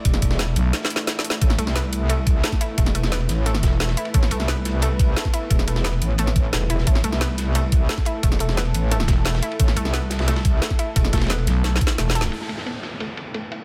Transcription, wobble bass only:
X:1
M:4/4
L:1/8
Q:1/4=176
K:Am
V:1 name="Wobble bass" clef=bass
E,,,3 z4 z | A,,, C,,4- C,, z2 | E,,,3 A,,,2 z3 | A,,, C,,4- C,, z2 |
E,,,3 A,,,3 E,,, E,,, | A,,, C,,4- C,, z2 | E,,,3 A,,,2 z3 | A,,, C,,4- C,, z2 |
E,,,3 z4 z | z8 |]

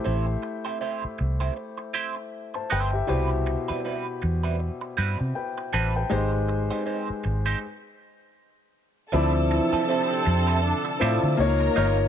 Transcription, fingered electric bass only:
X:1
M:4/4
L:1/16
Q:"Swing 16ths" 1/4=79
K:Ddor
V:1 name="Fingered electric bass" clef=bass
A,,,2 z4 C,,2 z6 G,,,2 | C,,3 z3 E,,3 z G,, C, z2 A,,,2 | _A,,,4 z2 A,,,2 z8 | D,,3 z3 F,,3 z A,, D, _D,,2 G,,,2 |]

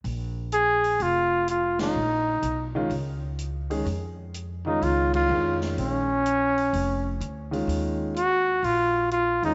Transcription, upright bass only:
X:1
M:4/4
L:1/8
Q:"Swing" 1/4=126
K:Bbm
V:1 name="Upright bass" clef=bass
B,,,4 F,,,4 | B,,,2 _C,,2 D,,4 | F,,4 D,,2 F,,2 | B,,,4 F,,,2 =D,,2 |
E,,4 B,,,3 =E,, |]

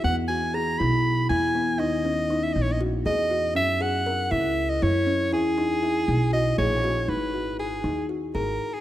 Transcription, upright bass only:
X:1
M:7/8
L:1/8
Q:1/4=119
K:G#m
V:1 name="Upright bass" clef=bass
E,,3 B,,,2 E,,2 | D,,3 A,,,2 E,,2 | F,,3 C,,2 F,,2 | E,,3 B,,,2 A,,,2 |
G,,,3 D,,2 G,,, z |]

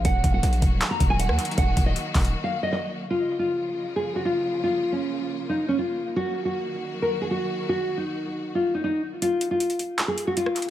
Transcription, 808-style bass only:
X:1
M:4/4
L:1/16
Q:1/4=157
K:Ebdor
V:1 name="808-style bass" clef=bass
E,,,2 E,,,2 B,,,2 E,,,2 z2 E,,,3 E,, z2 | E,,,2 E,,,2 z2 E,,,2 z8 | z16 | z16 |
z16 | z16 | z16 |]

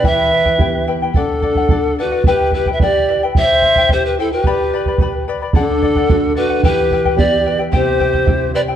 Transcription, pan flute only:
X:1
M:2/4
L:1/16
Q:1/4=109
K:Em
V:1 name="Pan flute"
e6 z2 | A6 B2 | B2 B3/2 e/2 d3 z | e4 c B A B- |
B6 z2 | A6 B2 | B4 d3 z | c6 d2 |]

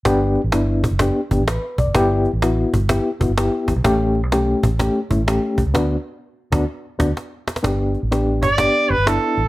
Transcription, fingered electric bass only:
X:1
M:4/4
L:1/16
Q:"Swing" 1/4=126
K:G
V:1 name="Fingered electric bass" clef=bass
G,,,3 A,,, G,,,3 F,,,2 z G,,, A,,,2 z B,,, F,,, | G,,,3 A,,,3 G,,,3 z F,,, G,,,2 z A,,, B,,, | A,,,3 B,,,3 A,,,3 z G,,, A,,,2 z B,,, ^C,, | D,,2 z4 D,,2 z2 D,,2 z4 |
G,,,3 A,,,3 G,,,3 z F,,, G,,,2 z A,,, z |]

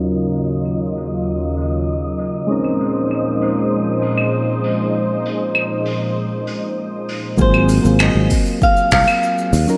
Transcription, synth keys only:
X:1
M:4/4
L:1/16
Q:1/4=98
K:Abmix
V:1 name="Synth keys"
[G,DEFB]16 | [A,CDEB]16- | [A,CDEB]16 | [G,B,CFA]3 [G,B,CFA]8- [G,B,CFA]3 z [G,DEFB] |]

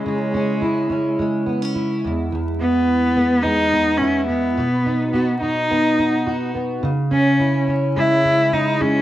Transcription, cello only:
X:1
M:4/4
L:1/8
Q:"Swing 16ths" 1/4=106
K:E
V:1 name="Cello"
G,4 z4 | z B,3 D2 C B,- | B,2 B, D4 z | z C2 z E2 D C |]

